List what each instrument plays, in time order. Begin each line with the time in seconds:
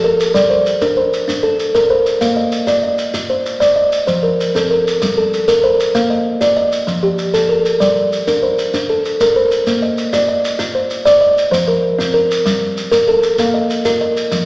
Already playing: kalimba A4
0.04 kalimba A#4
0.20 shekere
0.34 kalimba G3 D5, shekere
0.50 kalimba C5
0.66 shekere
0.81 kalimba D4 A#4, shekere
0.97 kalimba C5
1.13 shekere
1.28 kalimba D4, shekere
1.43 kalimba A4
1.60 shekere
1.75 kalimba A#4, shekere
1.90 kalimba C5
2.06 shekere
2.21 kalimba A#3 F5, shekere
2.36 kalimba D#5
2.52 shekere
2.67 kalimba F4 D5, shekere
2.83 kalimba D#5
2.98 shekere
3.14 kalimba F4, shekere
3.30 kalimba C5
3.46 shekere
3.60 kalimba D5, shekere
3.76 kalimba D#5
3.92 shekere
4.07 kalimba F3 C5, shekere
4.23 kalimba A#4
4.40 shekere
4.55 kalimba C4 A4, shekere
4.71 kalimba A#4
4.87 shekere
5.02 kalimba G3, shekere
5.17 kalimba A4
5.33 shekere
5.48 kalimba A#4, shekere
5.64 kalimba C5
5.80 shekere
5.95 kalimba A#3 F5, shekere
6.10 kalimba D#5
6.41 kalimba F4 D5, shekere
6.57 kalimba D#5
6.72 shekere
6.87 kalimba F3, shekere
7.03 kalimba G4
7.18 shekere
7.34 kalimba A4, shekere
7.49 kalimba A#4
7.65 shekere
7.80 kalimba G3 D5, shekere
8.12 shekere
8.27 kalimba D4 A#4, shekere
8.43 kalimba C5
8.58 shekere
8.74 kalimba D4, shekere
8.89 kalimba A4
9.05 shekere
9.20 kalimba A#4, shekere
9.36 kalimba C5
9.51 shekere
9.67 kalimba A#3, shekere
9.82 kalimba D#5
9.98 shekere
10.13 kalimba F4 D5, shekere
10.28 kalimba D#5
10.45 shekere
10.59 kalimba F4, shekere
10.75 kalimba C5
10.90 shekere
11.05 kalimba D5, shekere
11.21 kalimba D#5
11.38 shekere
11.51 kalimba F3 C5, shekere
11.68 kalimba A#4
11.98 kalimba C4 F4, shekere
12.14 kalimba A#4
12.31 shekere
12.46 kalimba G3, shekere
12.77 shekere
12.92 kalimba A#4, shekere
13.08 kalimba A4
13.23 shekere
13.38 kalimba A#3 F5, shekere
13.54 kalimba D#5
13.70 shekere
13.85 kalimba F4 A#4, shekere
14.01 kalimba D#5
14.17 shekere
14.32 kalimba F3, shekere